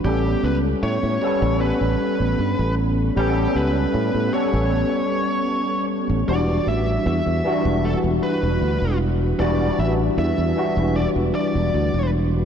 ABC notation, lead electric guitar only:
X:1
M:4/4
L:1/8
Q:1/4=77
K:Edor
V:1 name="Lead electric guitar"
G B c2 B3 z | G B2 c4 z | d e e2 A B2 z | d e e2 d d2 z |]